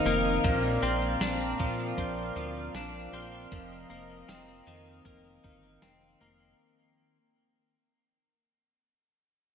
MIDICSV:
0, 0, Header, 1, 5, 480
1, 0, Start_track
1, 0, Tempo, 769231
1, 277, Time_signature, 4, 2, 24, 8
1, 5959, End_track
2, 0, Start_track
2, 0, Title_t, "Analog synth pad"
2, 0, Program_c, 0, 89
2, 0, Note_on_c, 0, 60, 80
2, 0, Note_on_c, 0, 70, 73
2, 0, Note_on_c, 0, 75, 63
2, 0, Note_on_c, 0, 77, 78
2, 252, Note_off_c, 0, 70, 0
2, 253, Note_off_c, 0, 60, 0
2, 254, Note_off_c, 0, 77, 0
2, 260, Note_off_c, 0, 75, 0
2, 275, Note_on_c, 0, 77, 79
2, 276, Note_on_c, 0, 60, 75
2, 277, Note_on_c, 0, 74, 68
2, 278, Note_on_c, 0, 70, 73
2, 2178, Note_off_c, 0, 74, 0
2, 2179, Note_off_c, 0, 70, 0
2, 2198, Note_on_c, 0, 70, 63
2, 2199, Note_on_c, 0, 75, 67
2, 4091, Note_off_c, 0, 60, 0
2, 4091, Note_off_c, 0, 77, 0
2, 4098, Note_off_c, 0, 70, 0
2, 4099, Note_off_c, 0, 75, 0
2, 5959, End_track
3, 0, Start_track
3, 0, Title_t, "Clean electric guitar"
3, 0, Program_c, 1, 27
3, 0, Note_on_c, 1, 41, 68
3, 0, Note_on_c, 1, 51, 54
3, 0, Note_on_c, 1, 63, 54
3, 38, Note_on_c, 1, 58, 48
3, 274, Note_off_c, 1, 41, 0
3, 277, Note_on_c, 1, 46, 72
3, 324, Note_off_c, 1, 63, 0
3, 325, Note_off_c, 1, 51, 0
3, 513, Note_off_c, 1, 58, 0
3, 515, Note_on_c, 1, 60, 55
3, 758, Note_on_c, 1, 62, 52
3, 998, Note_on_c, 1, 53, 50
3, 1232, Note_off_c, 1, 60, 0
3, 1234, Note_on_c, 1, 60, 48
3, 1473, Note_off_c, 1, 53, 0
3, 1475, Note_on_c, 1, 53, 53
3, 1713, Note_off_c, 1, 62, 0
3, 1720, Note_on_c, 1, 62, 56
3, 1954, Note_off_c, 1, 60, 0
3, 1956, Note_on_c, 1, 60, 52
3, 2193, Note_off_c, 1, 46, 0
3, 2195, Note_on_c, 1, 41, 65
3, 2247, Note_off_c, 1, 62, 0
3, 2430, Note_off_c, 1, 60, 0
3, 2433, Note_on_c, 1, 58, 52
3, 2674, Note_on_c, 1, 60, 56
3, 2911, Note_off_c, 1, 53, 0
3, 2914, Note_on_c, 1, 51, 52
3, 3150, Note_off_c, 1, 58, 0
3, 3152, Note_on_c, 1, 58, 46
3, 3391, Note_off_c, 1, 51, 0
3, 3394, Note_on_c, 1, 51, 50
3, 3633, Note_off_c, 1, 60, 0
3, 3635, Note_on_c, 1, 60, 53
3, 3872, Note_off_c, 1, 58, 0
3, 3875, Note_on_c, 1, 58, 53
3, 4379, Note_off_c, 1, 41, 0
3, 4476, Note_off_c, 1, 51, 0
3, 4476, Note_off_c, 1, 58, 0
3, 4476, Note_off_c, 1, 60, 0
3, 5959, End_track
4, 0, Start_track
4, 0, Title_t, "Analog synth bass"
4, 0, Program_c, 2, 38
4, 35, Note_on_c, 2, 29, 96
4, 247, Note_off_c, 2, 29, 0
4, 279, Note_on_c, 2, 34, 98
4, 489, Note_off_c, 2, 34, 0
4, 515, Note_on_c, 2, 34, 89
4, 727, Note_off_c, 2, 34, 0
4, 752, Note_on_c, 2, 34, 90
4, 965, Note_off_c, 2, 34, 0
4, 999, Note_on_c, 2, 46, 90
4, 1209, Note_off_c, 2, 46, 0
4, 1235, Note_on_c, 2, 34, 94
4, 1447, Note_off_c, 2, 34, 0
4, 1473, Note_on_c, 2, 38, 86
4, 1686, Note_off_c, 2, 38, 0
4, 1712, Note_on_c, 2, 34, 98
4, 1925, Note_off_c, 2, 34, 0
4, 1951, Note_on_c, 2, 34, 92
4, 2165, Note_off_c, 2, 34, 0
4, 2196, Note_on_c, 2, 29, 106
4, 2408, Note_off_c, 2, 29, 0
4, 2434, Note_on_c, 2, 29, 86
4, 2646, Note_off_c, 2, 29, 0
4, 2673, Note_on_c, 2, 29, 82
4, 2886, Note_off_c, 2, 29, 0
4, 2916, Note_on_c, 2, 41, 93
4, 3128, Note_off_c, 2, 41, 0
4, 3155, Note_on_c, 2, 29, 90
4, 3367, Note_off_c, 2, 29, 0
4, 3399, Note_on_c, 2, 31, 84
4, 3609, Note_off_c, 2, 31, 0
4, 3638, Note_on_c, 2, 29, 89
4, 3849, Note_off_c, 2, 29, 0
4, 3874, Note_on_c, 2, 29, 89
4, 4087, Note_off_c, 2, 29, 0
4, 5959, End_track
5, 0, Start_track
5, 0, Title_t, "Drums"
5, 40, Note_on_c, 9, 42, 42
5, 103, Note_off_c, 9, 42, 0
5, 277, Note_on_c, 9, 36, 94
5, 278, Note_on_c, 9, 42, 57
5, 340, Note_off_c, 9, 36, 0
5, 340, Note_off_c, 9, 42, 0
5, 519, Note_on_c, 9, 42, 41
5, 581, Note_off_c, 9, 42, 0
5, 756, Note_on_c, 9, 38, 110
5, 759, Note_on_c, 9, 42, 68
5, 818, Note_off_c, 9, 38, 0
5, 821, Note_off_c, 9, 42, 0
5, 994, Note_on_c, 9, 42, 49
5, 997, Note_on_c, 9, 36, 82
5, 1056, Note_off_c, 9, 42, 0
5, 1059, Note_off_c, 9, 36, 0
5, 1234, Note_on_c, 9, 36, 64
5, 1236, Note_on_c, 9, 42, 66
5, 1297, Note_off_c, 9, 36, 0
5, 1298, Note_off_c, 9, 42, 0
5, 1478, Note_on_c, 9, 42, 41
5, 1541, Note_off_c, 9, 42, 0
5, 1714, Note_on_c, 9, 38, 87
5, 1718, Note_on_c, 9, 42, 54
5, 1776, Note_off_c, 9, 38, 0
5, 1780, Note_off_c, 9, 42, 0
5, 1960, Note_on_c, 9, 42, 39
5, 2022, Note_off_c, 9, 42, 0
5, 2196, Note_on_c, 9, 36, 87
5, 2196, Note_on_c, 9, 42, 64
5, 2259, Note_off_c, 9, 36, 0
5, 2259, Note_off_c, 9, 42, 0
5, 2439, Note_on_c, 9, 42, 34
5, 2502, Note_off_c, 9, 42, 0
5, 2676, Note_on_c, 9, 38, 101
5, 2680, Note_on_c, 9, 42, 63
5, 2739, Note_off_c, 9, 38, 0
5, 2742, Note_off_c, 9, 42, 0
5, 2916, Note_on_c, 9, 42, 46
5, 2978, Note_off_c, 9, 42, 0
5, 3155, Note_on_c, 9, 36, 65
5, 3158, Note_on_c, 9, 42, 67
5, 3217, Note_off_c, 9, 36, 0
5, 3220, Note_off_c, 9, 42, 0
5, 3397, Note_on_c, 9, 36, 71
5, 3398, Note_on_c, 9, 42, 39
5, 3459, Note_off_c, 9, 36, 0
5, 3461, Note_off_c, 9, 42, 0
5, 3633, Note_on_c, 9, 38, 81
5, 3637, Note_on_c, 9, 42, 61
5, 3696, Note_off_c, 9, 38, 0
5, 3699, Note_off_c, 9, 42, 0
5, 3878, Note_on_c, 9, 42, 38
5, 3940, Note_off_c, 9, 42, 0
5, 5959, End_track
0, 0, End_of_file